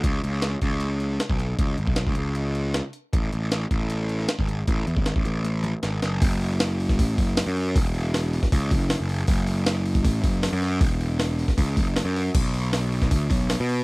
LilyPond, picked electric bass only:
\new Staff \with { instrumentName = "Picked electric bass" } { \clef bass \time 4/4 \key fis \minor \tempo 4 = 156 cis,8 cis,4 cis,4.~ cis,16 b,,8. | cis,8 gis,,16 b,,8 cis,16 cis,2 r8 | a,,8 a,,4 a,,4.~ a,,16 gis,,8. | a,,8 e,16 gis,,8 a,,16 a,,4. gis,,8 fis,,8 |
fis,,2 a,,8 fis,,8. fis,8. | e,,2 cis,8 fis,,8. fis,,8. | fis,,2 a,,8 fis,,8. fis,8. | e,,2 cis,8 fis,,8. fis,8. |
b,,2 d,8 b,,8. b,8. | }